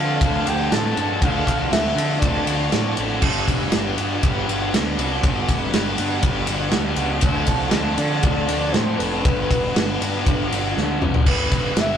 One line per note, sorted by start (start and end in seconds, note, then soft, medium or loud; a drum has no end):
0.00 0.17 D3 loud
0.00 0.19 D3 medium
0.00 0.21 F3 medium
0.00 0.21 A3 medium
0.00 0.21 C4 medium
0.00 0.22 D4 medium
0.00 0.23 D4 medium
0.00 0.22 A4 medium
0.00 0.50 F5 loud
0.21 0.42 D2 medium
0.21 0.71 D3 loud
0.21 0.69 F3 loud
0.21 0.46 A3 loud
0.21 0.48 C4 loud
0.21 0.48 D4 loud
0.21 0.45 A4 loud
0.21 kick loud
0.21 ride loud
0.46 0.67 D2 medium
0.46 0.99 F3 medium
0.46 0.98 A3 medium
0.46 0.70 C4 medium
0.46 0.71 D4 medium
0.46 0.72 A4 medium
0.46 0.74 G5 loud
0.46 ride medium
0.70 0.92 A2 medium
0.70 1.21 F3 medium
0.70 0.99 C4 medium
0.70 0.99 D4 medium
0.70 0.96 A4 medium
0.70 1.24 A5 loud
0.70 snare loud
0.70 ride loud
0.97 1.17 G2 medium
0.97 1.22 F3 medium
0.97 1.22 A3 medium
0.97 1.22 C4 medium
0.97 1.24 D4 medium
0.97 1.23 A4 medium
0.97 ride medium
1.22 1.42 D2 medium
1.22 1.72 D3 loud
1.22 1.71 F3 loud
1.22 1.73 A3 loud
1.22 1.48 C4 medium
1.22 1.48 D4 loud
1.22 1.46 A4 loud
1.22 1.74 F5 loud
1.22 kick loud
1.22 ride loud
1.47 1.68 C2 medium
1.47 1.71 C4 medium
1.47 1.73 D4 medium
1.47 1.73 A4 medium
1.47 kick medium
1.47 ride medium
1.71 1.92 D2 medium
1.71 2.21 D3 medium
1.71 2.21 F3 medium
1.71 2.23 A3 medium
1.71 1.99 C4 medium
1.71 1.98 D4 medium
1.71 1.96 A4 medium
1.71 2.19 E5 loud
1.71 snare loud
1.71 ride loud
1.95 2.16 D3 medium
1.95 2.22 D4 medium
1.95 2.23 A4 medium
1.95 ride medium
2.00 2.21 C4 medium
2.19 2.43 D2 medium
2.19 2.71 D3 loud
2.19 2.70 F3 medium
2.19 2.48 C4 loud
2.19 2.48 D4 loud
2.19 2.92 D5 medium
2.19 kick loud
2.19 ride loud
2.24 2.48 A3 loud
2.24 2.45 A4 loud
2.46 2.67 D2 medium
2.46 2.97 A3 medium
2.46 2.71 C4 medium
2.46 2.73 D4 medium
2.46 2.73 A4 medium
2.46 ride medium
2.51 2.99 F3 medium
2.71 2.93 A2 medium
2.71 3.20 F3 medium
2.71 2.97 C4 medium
2.71 2.97 D4 medium
2.71 2.94 A4 medium
2.71 snare loud
2.71 ride loud
2.96 3.18 A1 medium
2.96 3.21 A3 medium
2.96 3.21 C4 medium
2.96 3.23 D4 medium
2.96 3.20 A4 medium
2.96 ride medium
3.00 3.22 F3 medium
3.21 3.43 G1 medium
3.21 4.21 G2 loud
3.21 3.72 D3 medium
3.21 3.49 G3 loud
3.21 3.48 B3 loud
3.21 3.47 D4 medium
3.21 3.46 G4 loud
3.21 kick loud
3.21 crash loud
3.46 3.68 F1 medium
3.46 3.71 G3 medium
3.46 3.72 B3 medium
3.46 3.73 D4 medium
3.46 3.74 G4 medium
3.46 kick medium
3.46 ride medium
3.71 3.93 G1 medium
3.71 4.22 D3 medium
3.71 3.99 G3 medium
3.71 3.98 B3 medium
3.71 3.97 D4 medium
3.71 3.96 G4 medium
3.71 snare loud
3.71 ride loud
3.97 4.18 G2 medium
3.97 4.21 G3 medium
3.97 4.22 B3 medium
3.97 4.24 D4 medium
3.97 4.23 G4 medium
3.97 ride medium
4.21 4.43 G1 medium
4.21 4.72 G2 medium
4.21 4.72 D3 loud
4.21 4.50 G3 loud
4.21 4.49 B3 medium
4.21 4.48 D4 medium
4.21 4.47 G4 medium
4.21 kick loud
4.21 ride loud
4.48 4.68 G1 medium
4.48 4.72 G3 medium
4.48 4.74 B3 medium
4.48 4.75 D4 medium
4.48 4.75 G4 medium
4.48 ride medium
4.73 4.93 D2 medium
4.73 5.02 G3 medium
4.73 5.01 B3 medium
4.73 5.00 D4 loud
4.73 4.98 G4 medium
4.73 snare loud
4.73 ride loud
4.96 5.18 C2 medium
4.96 5.27 D4 medium
4.96 5.26 G4 medium
4.96 ride medium
5.00 5.24 G3 medium
5.00 5.24 B3 medium
5.00 5.26 D4 medium
5.23 5.44 G1 medium
5.23 5.73 G2 loud
5.23 5.74 D3 loud
5.23 5.51 G3 loud
5.23 5.50 B3 loud
5.23 5.50 D4 medium
5.23 5.48 G4 loud
5.23 kick loud
5.23 ride loud
5.49 5.69 F1 medium
5.49 5.72 G3 medium
5.49 5.73 B3 medium
5.49 5.75 D4 medium
5.49 5.75 G4 medium
5.49 kick medium
5.49 ride medium
5.72 5.94 G1 medium
5.72 6.22 D3 medium
5.72 6.00 G3 medium
5.72 6.00 B3 medium
5.72 6.00 D4 medium
5.72 snare loud
5.72 ride loud
5.76 5.98 G4 medium
5.98 6.19 G2 medium
5.98 6.24 G3 medium
5.98 6.24 B3 medium
5.98 6.26 D4 medium
5.98 6.25 G4 medium
5.98 ride medium
6.23 6.44 G1 medium
6.23 6.74 G2 loud
6.23 6.74 D3 loud
6.23 6.50 G3 medium
6.23 6.49 B3 loud
6.23 6.48 D4 loud
6.23 6.47 G4 loud
6.23 kick loud
6.23 ride loud
6.47 6.69 G1 medium
6.47 6.71 G3 medium
6.47 6.72 B3 medium
6.47 6.74 D4 medium
6.47 6.74 G4 medium
6.47 ride medium
6.71 6.94 D2 medium
6.71 6.98 G3 medium
6.71 6.97 B3 medium
6.71 6.97 D4 medium
6.71 6.95 G4 medium
6.71 snare loud
6.71 ride loud
6.96 7.18 C#2 loud
6.96 7.22 G3 medium
6.96 7.22 B3 medium
6.96 7.23 D4 medium
6.96 7.21 G4 medium
6.96 ride medium
7.21 7.44 D2 loud
7.21 7.73 D3 loud
7.21 7.70 F3 loud
7.21 7.72 A3 loud
7.21 7.48 C4 loud
7.21 7.47 D4 loud
7.21 7.45 A4 loud
7.21 kick loud
7.21 ride loud
7.46 7.69 C2 medium
7.46 7.72 C4 medium
7.46 7.74 D4 medium
7.46 7.73 A4 medium
7.46 kick medium
7.46 ride medium
7.71 7.94 D2 loud
7.71 8.21 D3 medium
7.71 8.23 F3 medium
7.71 8.24 A3 medium
7.71 8.00 C4 medium
7.71 8.00 D4 medium
7.71 7.97 A4 medium
7.71 snare loud
7.71 ride loud
7.96 8.19 D3 loud
7.96 8.25 D4 medium
7.96 8.26 A4 medium
7.96 8.74 D5 loud
7.96 ride medium
8.01 8.25 C4 medium
8.23 8.44 D2 medium
8.23 8.75 D3 medium
8.23 8.73 F3 loud
8.23 8.49 A3 loud
8.23 8.51 C4 loud
8.23 8.50 D4 loud
8.23 kick loud
8.23 ride loud
8.27 8.47 A4 loud
8.49 8.70 D2 medium
8.49 9.00 F3 medium
8.49 8.98 A3 medium
8.49 8.74 C4 medium
8.49 8.76 D4 medium
8.49 8.75 A4 medium
8.49 ride medium
8.72 8.95 A2 medium
8.72 9.23 F3 medium
8.72 9.02 C4 medium
8.72 9.02 D4 medium
8.72 8.99 C5 loud
8.72 snare loud
8.72 ride medium
8.76 8.99 A4 medium
8.97 9.20 F1 medium
8.97 9.24 F3 medium
8.97 9.23 A3 medium
8.97 9.27 D4 medium
8.97 9.24 A4 medium
8.97 10.50 B4 medium
8.97 ride medium
9.02 9.25 C4 medium
9.02 9.28 D4 medium
9.25 9.46 G1 loud
9.25 9.76 G2 medium
9.25 9.75 D3 loud
9.25 9.74 G3 medium
9.25 9.51 B3 loud
9.25 9.50 D4 loud
9.25 kick loud
9.25 ride medium
9.51 9.71 E1 medium
9.51 9.77 B3 medium
9.51 9.78 D4 medium
9.51 kick medium
9.51 ride medium
9.75 9.96 G1 medium
9.75 10.25 D3 medium
9.75 10.26 G3 medium
9.75 10.01 B3 medium
9.75 9.99 D4 medium
9.75 snare loud
9.75 ride loud
10.00 10.22 G2 medium
10.00 10.26 B3 medium
10.00 10.27 D4 medium
10.00 ride medium
10.24 10.47 G1 medium
10.24 10.76 G2 medium
10.24 10.75 D3 medium
10.24 10.52 G3 medium
10.24 10.52 B3 medium
10.24 kick loud
10.24 ride loud
10.28 10.49 D4 loud
10.50 10.72 G1 medium
10.50 11.02 G3 medium
10.50 10.77 B3 medium
10.50 10.78 D4 medium
10.50 ride medium
10.76 10.97 D2 medium
10.76 11.25 D3 medium
10.76 11.00 B3 medium
10.76 10.98 D4 medium
10.76 snare medium
10.99 11.22 C2 medium
10.99 11.26 F#3 medium
10.99 11.26 G3 medium
10.99 11.25 B3 medium
10.99 11.24 D4 medium
10.99 mid tom medium
11.14 floor tom loud
11.26 11.47 G1 loud
11.26 11.97 G2 medium
11.26 11.75 D3 loud
11.26 11.76 G3 loud
11.26 11.77 B3 loud
11.26 11.82 B4 loud
11.26 kick loud
11.26 crash loud
11.30 11.79 D4 medium
11.52 11.73 F1 medium
11.52 kick medium
11.52 ride medium
11.76 11.97 G1 medium
11.76 11.97 D3 medium
11.76 11.97 G3 medium
11.76 11.97 B3 medium
11.76 11.97 D4 medium
11.76 snare loud
11.76 ride loud
11.80 11.97 E5 loud